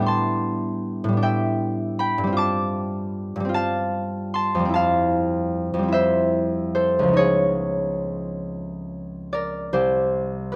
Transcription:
0.00 1.03 A2 medium
0.00 1.07 G3 medium
0.00 2.64 A3 medium
0.00 1.12 B3 medium
0.00 1.16 D4 medium
0.00 2.37 E4 medium
0.00 1.22 E5 medium
0.00 1.21 G5 loud
0.00 1.59 B5 medium
0.06 2.37 A5 medium
0.06 3.96 C6 loud
1.04 2.31 A2 medium
1.09 2.22 G3 medium
1.13 2.36 B3 medium
1.17 4.72 D4 medium
1.23 2.41 E5 medium
1.23 1.99 G5 loud
1.99 5.90 G5 medium
1.99 2.41 B5 loud
2.18 3.34 G2 medium
2.23 3.39 G3 medium
2.23 3.44 C4 medium
2.33 3.48 F4 medium
2.37 3.53 A5 medium
2.37 4.74 D6 loud
3.36 4.66 G2 medium
3.40 4.58 G3 medium
3.45 4.64 C4 medium
3.49 7.39 F4 medium
3.54 4.74 F5 medium
3.54 4.34 A5 loud
4.34 4.73 A5 medium
4.34 7.21 C6 loud
4.55 5.72 F2 medium
4.59 5.78 G3 medium
4.65 5.82 C4 medium
4.65 5.87 E4 medium
4.74 8.65 F5 medium
4.74 7.21 A5 loud
5.74 7.11 F2 medium
5.79 7.13 G3 medium
5.83 7.15 C4 medium
5.88 7.18 E4 medium
5.92 6.74 C5 medium
5.92 7.20 E5 loud
6.75 7.21 A4 medium
6.75 7.20 C5 medium
6.99 9.67 C#2 medium
7.03 9.69 F3 medium
7.08 10.56 B3 medium
7.13 9.74 D#4 medium
7.13 9.76 C#5 loud
7.18 9.77 G#4 medium
9.33 9.78 A#4 medium
9.33 10.01 D5 medium
9.73 10.56 C2 medium
9.73 10.52 G4 medium
9.73 10.56 C5 medium
10.52 10.56 B4 medium

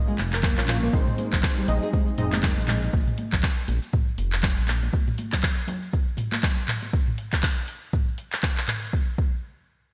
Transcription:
0.00 0.16 A#3 medium
0.00 0.16 C#4 medium
0.00 0.16 F4 medium
0.00 0.16 D#5 loud
0.08 0.17 G#3 medium
0.08 shaker soft
0.18 0.59 F1 loud
0.18 clap medium
0.18 open hi-hat medium
0.18 muted conga medium
0.33 0.38 A#4 medium
0.33 clap medium
0.33 open hi-hat soft
0.33 shaker medium
0.43 0.57 A#3 loud
0.43 kick loud
0.43 clap loud
0.43 low conga loud
0.43 shaker medium
0.58 0.90 A#1 medium
0.58 0.91 A#3 medium
0.58 0.91 C#4 medium
0.58 0.91 F4 medium
0.58 0.91 C#5 loud
0.58 clap medium
0.58 muted conga soft
0.58 shaker soft
0.68 0.76 F4 medium
0.68 clap loud
0.68 mid tom medium
0.68 open hi-hat medium
0.68 high conga medium
0.83 0.92 A#3 loud
0.83 muted conga medium
0.83 shaker medium
0.93 1.05 A#1 loud
0.93 1.01 D#3 medium
0.93 1.66 G#3 medium
0.93 1.66 C4 medium
0.93 1.66 D#4 medium
0.93 1.66 C5 loud
0.93 kick loud
0.93 high conga medium
0.93 shaker medium
1.08 mid tom medium
1.08 muted conga medium
1.08 shaker soft
1.18 1.32 G#3 medium
1.18 open hi-hat medium
1.18 high conga loud
1.33 1.41 A#1 medium
1.33 kick medium
1.33 clap medium
1.33 muted conga soft
1.33 low conga medium
1.33 shaker medium
1.43 kick loud
1.43 clap loud
1.43 shaker medium
1.58 1.67 G3 medium
1.58 shaker soft
1.68 1.80 A#1 loud
1.68 2.16 G#3 loud
1.68 2.16 C4 medium
1.68 2.16 D#4 medium
1.68 2.16 D#5 loud
1.68 open hi-hat medium
1.68 muted conga medium
1.68 high conga medium
1.68 low conga medium
1.83 1.88 G#4 medium
1.83 shaker medium
1.93 2.07 G#3 loud
1.93 kick loud
1.93 muted conga soft
1.93 shaker medium
2.08 shaker soft
2.18 2.59 F1 loud
2.18 2.91 G#3 loud
2.18 2.91 C4 medium
2.18 2.26 D#4 medium
2.18 2.91 D#4 medium
2.18 2.91 D#5 loud
2.18 mid tom loud
2.18 open hi-hat medium
2.18 muted conga medium
2.33 2.42 G#3 medium
2.33 clap medium
2.33 high conga loud
2.33 shaker medium
2.43 2.51 D#3 medium
2.43 kick loud
2.43 clap loud
2.43 low conga loud
2.43 shaker medium
2.58 2.90 A#1 medium
2.58 muted conga soft
2.58 shaker soft
2.68 2.82 G#3 medium
2.68 clap medium
2.68 mid tom medium
2.68 open hi-hat medium
2.83 muted conga medium
2.83 shaker medium
2.93 3.05 A#1 loud
2.93 kick loud
2.93 high conga medium
2.93 shaker medium
3.08 mid tom medium
3.08 muted conga medium
3.08 shaker soft
3.18 open hi-hat medium
3.18 high conga loud
3.32 3.41 A#1 medium
3.32 kick medium
3.32 clap medium
3.32 muted conga soft
3.32 low conga medium
3.32 shaker medium
3.43 kick loud
3.43 clap loud
3.43 shaker medium
3.58 shaker soft
3.68 3.80 A#1 loud
3.68 open hi-hat loud
3.68 muted conga medium
3.68 high conga medium
3.83 shaker medium
3.93 kick loud
3.93 mid tom medium
3.93 muted conga soft
3.93 shaker medium
4.08 shaker soft
4.18 4.59 F1 loud
4.18 open hi-hat medium
4.18 muted conga medium
4.32 clap medium
4.32 open hi-hat soft
4.32 shaker medium
4.43 kick loud
4.43 clap loud
4.43 low conga loud
4.43 shaker medium
4.58 4.90 A#1 medium
4.58 muted conga soft
4.58 shaker soft
4.67 clap medium
4.67 open hi-hat medium
4.67 high conga medium
4.83 muted conga medium
4.83 shaker medium
4.93 kick loud
4.93 high conga medium
4.93 shaker medium
5.08 mid tom medium
5.08 muted conga medium
5.08 shaker soft
5.18 open hi-hat medium
5.18 high conga medium
5.32 kick medium
5.32 clap medium
5.32 muted conga soft
5.32 low conga loud
5.32 shaker medium
5.43 kick loud
5.43 clap loud
5.43 shaker medium
5.58 shaker soft
5.67 open hi-hat medium
5.67 muted conga medium
5.67 high conga medium
5.67 low conga loud
5.83 shaker medium
5.93 kick loud
5.93 muted conga soft
5.93 shaker medium
6.08 shaker soft
6.17 mid tom loud
6.17 open hi-hat loud
6.17 muted conga medium
6.32 clap medium
6.32 high conga loud
6.32 shaker medium
6.43 kick loud
6.43 clap loud
6.43 low conga loud
6.43 shaker medium
6.56 muted conga soft
6.56 shaker soft
6.68 clap medium
6.68 mid tom medium
6.68 open hi-hat loud
6.82 muted conga soft
6.82 shaker medium
6.93 kick loud
6.93 shaker medium
7.08 mid tom medium
7.08 shaker soft
7.18 open hi-hat medium
7.33 kick medium
7.33 clap medium
7.33 shaker medium
7.43 kick loud
7.43 clap loud
7.43 shaker medium
7.58 shaker soft
7.68 open hi-hat loud
7.83 shaker medium
7.93 kick loud
7.93 mid tom medium
7.93 shaker medium
8.08 shaker soft
8.18 open hi-hat medium
8.33 clap medium
8.33 open hi-hat medium
8.33 shaker medium
8.43 kick loud
8.43 clap loud
8.43 shaker medium
8.57 clap medium
8.57 shaker soft
8.68 clap loud
8.68 mid tom medium
8.68 open hi-hat medium
8.83 shaker medium
8.93 kick loud
9.18 kick loud

